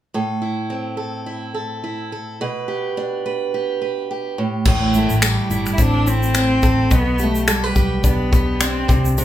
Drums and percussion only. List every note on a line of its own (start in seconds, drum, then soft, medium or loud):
4.65 kick loud
4.65 crash medium
4.94 shaker soft
5.10 shaker soft
5.22 finger snap loud
5.22 tambourine medium
5.22 shaker medium
5.51 shaker soft
5.66 finger snap soft
5.66 shaker soft
5.78 kick medium
5.78 shaker medium
6.07 shaker medium
6.23 shaker soft
6.35 finger snap medium
6.35 tambourine medium
6.35 shaker medium
6.63 kick medium
6.63 shaker soft
6.91 kick medium
6.91 shaker medium
7.19 shaker soft
7.35 shaker soft
7.48 finger snap loud
7.48 tambourine medium
7.48 shaker medium
7.76 kick medium
7.76 shaker soft
8.04 kick medium
8.04 shaker medium
8.33 kick medium
8.33 shaker medium
8.61 finger snap loud
8.61 tambourine medium
8.61 shaker medium
8.89 kick loud
8.89 shaker soft
9.05 shaker medium
9.18 shaker medium